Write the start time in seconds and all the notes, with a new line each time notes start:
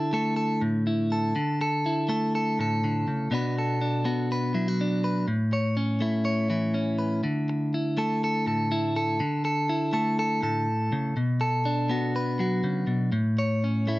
Already playing: D3 E4 A4
0.13 A3 A4
0.36 A4
0.61 A2
0.87 E4
1.12 A4
1.36 D3
1.61 A4
1.86 E4
2.09 A3 A4
2.35 A4
2.59 A2 A4
2.84 D3
3.08 C#3
3.31 B2 B3 D4 F#4 B4
3.58 A4
3.81 D4
4.05 B3 F#4
4.32 B4
4.54 F#3 E4
4.68 F#4
4.81 D4
5.04 B4
5.28 A2
5.53 C#5
5.77 C#4
6.01 A3 E4
6.25 C#5
6.50 E3 E4
6.74 C#4
6.99 B4
7.24 D3
7.49 muted clean electric guitar stroke
7.74 E4
7.97 A3 A4
8.24 A4
8.46 A2 A4
8.72 E4
8.96 A4
9.20 D3
9.45 A4
9.69 E4
9.93 A3 A4
10.19 A4
10.42 A2 A4
10.92 C#3
11.17 B2
11.41 A4
11.65 D4
11.89 B3 F#4
12.16 B4
12.39 F#3 F#4
12.64 C#3
12.87 B2
13.12 A2
13.39 C#5
13.64 C#4
13.87 A3 E4